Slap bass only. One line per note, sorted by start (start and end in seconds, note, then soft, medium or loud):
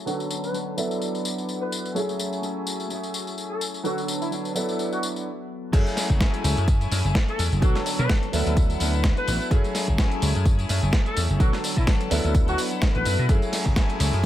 5.73 5.83 F#2 loud
6.10 6.17 F#1 loud
6.44 6.53 C#2 medium
6.57 6.87 F#2 medium
6.91 7.01 F#2 loud
7.05 7.12 F#1 medium
7.39 7.48 E2 medium
7.52 7.59 F#1 medium
7.99 8.06 B2 loud
8.33 8.42 D2 medium
8.46 8.75 D2 medium
8.80 9.11 D2 medium
9.28 9.37 A1 loud
9.51 9.60 F#2 loud
9.88 9.95 F#1 loud
10.22 10.31 C#2 medium
10.35 10.65 F#2 medium
10.69 10.79 F#2 loud
10.83 10.90 F#1 loud
11.17 11.26 E2 medium
11.30 11.37 F#1 medium
11.77 11.84 B2 loud
12.11 12.20 D2 medium
12.24 12.53 D2 medium
12.95 13.03 A1 medium
13.06 13.15 F#2 loud
13.19 13.26 B2 medium
13.29 13.38 F#2 loud
13.66 13.73 F#1 loud
14.00 14.09 C#2 medium
14.13 14.26 F#2 medium